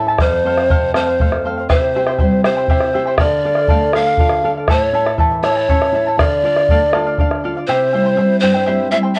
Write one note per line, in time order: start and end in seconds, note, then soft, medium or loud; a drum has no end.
0.00 0.16 A2 medium
0.00 0.19 E4 medium
0.07 0.21 E4 soft
0.07 0.18 A4 soft
0.07 0.20 A5 soft
0.07 bombo rim soft
0.18 1.66 F2 medium
0.18 0.44 A4 medium
0.18 0.45 C5 medium
0.18 0.91 C5 medium
0.18 0.45 F5 medium
0.18 bombo rim medium
0.18 bombo low medium
0.32 bombo rim soft
0.44 0.69 C4 medium
0.44 0.58 A4 medium
0.44 0.57 C5 medium
0.44 0.56 F5 medium
0.44 bombo rim soft
0.57 0.69 C5 soft
0.57 0.70 F5 soft
0.57 bombo rim medium
0.70 0.94 C3 medium
0.70 0.93 A4 medium
0.70 0.94 C5 medium
0.70 0.94 F5 medium
0.70 bombo low medium
0.94 1.19 C4 medium
0.94 1.07 A4 medium
0.94 1.06 C5 medium
0.94 1.48 C5 medium
0.94 1.06 F5 medium
0.94 bombo rim medium
1.07 1.20 C5 soft
1.07 1.20 F5 soft
1.20 1.44 A3 soft
1.20 1.43 A4 soft
1.20 1.44 C5 medium
1.20 1.45 F5 medium
1.20 bombo low medium
1.32 bombo rim medium
1.45 1.69 C4 medium
1.45 1.57 A4 soft
1.45 1.57 C5 medium
1.45 1.56 F5 medium
1.58 1.69 C5 soft
1.58 1.70 F5 soft
1.69 3.16 C3 medium
1.69 1.95 E4 medium
1.69 1.95 G4 medium
1.69 1.95 C5 medium
1.69 2.41 C5 medium
1.69 1.94 E5 medium
1.69 1.95 G5 medium
1.69 bombo rim medium
1.69 bombo low medium
1.95 2.07 E4 medium
1.95 2.20 G4 medium
1.95 2.07 C5 medium
1.95 2.07 E5 medium
1.95 2.06 G5 medium
2.07 2.18 E4 soft
2.07 2.18 C5 soft
2.07 2.19 G5 medium
2.07 bombo rim medium
2.18 2.45 G3 medium
2.18 2.44 E4 medium
2.18 2.44 C5 medium
2.18 2.43 E5 medium
2.18 2.44 G5 medium
2.18 bombo low medium
2.32 bombo rim soft
2.44 2.57 E4 medium
2.44 2.70 G4 soft
2.44 3.15 C5 medium
2.44 2.56 C5 medium
2.44 2.57 E5 soft
2.44 2.55 G5 medium
2.44 bombo rim medium
2.56 2.68 E4 soft
2.56 2.69 C5 soft
2.56 2.69 G5 soft
2.56 bombo rim soft
2.68 2.93 E4 medium
2.68 2.94 E4 soft
2.68 2.94 G4 medium
2.68 2.94 C5 medium
2.68 2.93 E5 medium
2.68 2.94 G5 medium
2.68 bombo low medium
2.80 bombo rim medium
2.93 3.07 E4 medium
2.93 3.19 G4 medium
2.93 3.06 C5 medium
2.93 3.07 E5 medium
2.93 3.06 G5 medium
2.93 bombo rim soft
3.06 3.19 E4 soft
3.06 3.19 C5 soft
3.06 3.19 G5 medium
3.06 bombo rim soft
3.18 4.66 D3 medium
3.18 3.44 A4 medium
3.18 3.97 D5 loud
3.18 3.44 D5 medium
3.18 3.45 F5 medium
3.18 bombo rim medium
3.18 bombo low medium
3.45 3.57 A4 medium
3.45 3.69 A4 medium
3.45 3.57 D5 medium
3.45 3.55 F5 medium
3.55 3.69 D5 soft
3.55 3.69 F5 medium
3.55 bombo rim medium
3.68 3.95 A3 medium
3.68 3.93 A4 medium
3.68 3.93 D5 medium
3.68 3.94 F5 medium
3.68 bombo low medium
3.81 bombo rim soft
3.93 4.07 A4 medium
3.93 4.19 A4 medium
3.93 4.07 D5 medium
3.93 4.05 F5 medium
3.93 4.51 F5 loud
3.93 bombo rim medium
4.05 4.19 D5 soft
4.05 4.19 F5 medium
4.05 bombo rim soft
4.18 4.44 F4 medium
4.18 4.43 A4 medium
4.18 4.44 D5 medium
4.18 4.44 F5 medium
4.18 bombo low medium
4.29 bombo rim medium
4.43 4.57 A4 medium
4.43 4.69 A4 medium
4.43 4.57 D5 medium
4.43 4.56 F5 medium
4.43 bombo rim soft
4.55 4.69 F5 medium
4.55 bombo rim soft
4.59 4.69 D5 soft
4.68 6.15 A2 medium
4.68 4.93 E4 medium
4.68 4.94 A4 medium
4.68 4.94 C#5 medium
4.68 5.15 C#5 medium
4.68 4.92 E5 medium
4.68 4.94 A5 medium
4.68 bombo rim medium
4.68 bombo low medium
4.93 5.18 E4 medium
4.93 5.06 E4 medium
4.93 5.05 A4 medium
4.93 5.06 E5 medium
4.93 5.05 A5 medium
5.06 5.18 E4 soft
5.06 5.18 A4 soft
5.06 5.19 A5 medium
5.06 bombo rim medium
5.18 5.43 E3 medium
5.18 5.44 E4 medium
5.18 5.44 A4 medium
5.18 5.43 E5 medium
5.18 5.44 A5 medium
5.18 bombo low medium
5.32 bombo rim soft
5.43 5.68 E4 medium
5.43 5.57 E4 soft
5.43 5.56 A4 medium
5.43 6.20 C#5 medium
5.43 5.57 E5 soft
5.43 5.55 A5 medium
5.43 bombo rim medium
5.56 5.69 E4 soft
5.56 5.69 A4 soft
5.56 5.69 A5 medium
5.56 bombo rim soft
5.69 5.93 C#4 medium
5.69 5.93 E4 medium
5.69 5.94 A4 medium
5.69 5.94 C#5 medium
5.69 5.93 E5 medium
5.69 5.94 A5 medium
5.69 bombo low medium
5.82 bombo rim medium
5.92 6.17 E4 medium
5.92 6.07 E4 medium
5.92 6.07 A4 medium
5.92 6.06 E5 soft
5.92 6.06 A5 medium
5.92 bombo rim soft
6.07 6.19 E4 soft
6.07 6.18 A4 soft
6.07 6.19 A5 soft
6.17 7.64 D3 medium
6.17 6.43 A4 medium
6.17 7.43 D5 loud
6.17 6.44 D5 medium
6.17 6.44 F5 medium
6.17 bombo rim medium
6.17 bombo low medium
6.31 bombo rim soft
6.43 6.68 F4 medium
6.43 6.57 A4 medium
6.43 6.57 D5 medium
6.43 6.56 F5 medium
6.56 6.69 D5 soft
6.56 6.69 F5 medium
6.56 bombo rim medium
6.68 6.94 A3 medium
6.68 6.93 A4 medium
6.68 6.93 D5 medium
6.68 6.93 F5 medium
6.68 bombo low medium
6.93 7.19 F4 medium
6.93 7.06 A4 medium
6.93 7.06 D5 medium
6.93 7.05 F5 medium
6.93 bombo rim medium
7.06 7.19 D5 soft
7.06 7.19 F5 medium
7.06 bombo rim soft
7.18 7.43 D4 soft
7.18 7.43 A4 medium
7.18 7.44 D5 medium
7.18 7.44 F5 medium
7.18 bombo rim soft
7.18 bombo low medium
7.31 bombo rim medium
7.44 7.68 F4 medium
7.44 7.56 A4 medium
7.44 7.57 D5 medium
7.44 7.56 F5 medium
7.56 7.69 D5 soft
7.56 7.69 F5 medium
7.56 bombo rim soft
7.67 8.17 C3 medium
7.67 7.93 E4 medium
7.67 7.94 G4 medium
7.67 8.39 C5 medium
7.67 7.93 C5 medium
7.67 7.92 E5 medium
7.67 7.93 G5 medium
7.93 8.16 G3 soft
7.93 8.18 C4 soft
7.93 8.05 E4 medium
7.93 8.18 E4 medium
7.93 8.05 C5 medium
7.93 8.06 E5 medium
7.93 8.04 G5 medium
8.06 8.17 E4 soft
8.06 8.17 C5 soft
8.06 8.18 G5 soft
8.17 8.58 G3 medium
8.17 8.58 C4 soft
8.17 8.42 E4 medium
8.17 8.59 E4 medium
8.17 8.42 C5 medium
8.17 8.41 E5 medium
8.17 8.42 G5 medium
8.40 8.91 G2 medium
8.40 8.55 E4 medium
8.40 8.88 C5 medium
8.40 8.54 C5 medium
8.40 8.55 E5 medium
8.40 8.53 G5 medium
8.54 8.66 E4 soft
8.54 8.66 C5 soft
8.54 8.66 G5 soft
8.66 8.91 G3 soft
8.66 8.92 C4 soft
8.66 8.91 E4 medium
8.66 8.92 E4 soft
8.66 8.92 G4 medium
8.66 8.92 C5 medium
8.66 8.91 E5 medium
8.66 8.92 G5 medium
8.91 9.13 G3 soft
8.91 9.13 C4 soft
8.91 9.04 E4 medium
8.91 9.13 E4 medium
8.91 9.03 C5 medium
8.91 8.97 E5 loud
8.91 9.05 E5 medium
8.91 9.02 G5 medium
9.03 9.16 E4 soft
9.03 9.17 C5 soft
9.03 9.17 G5 soft
9.15 9.19 F5 loud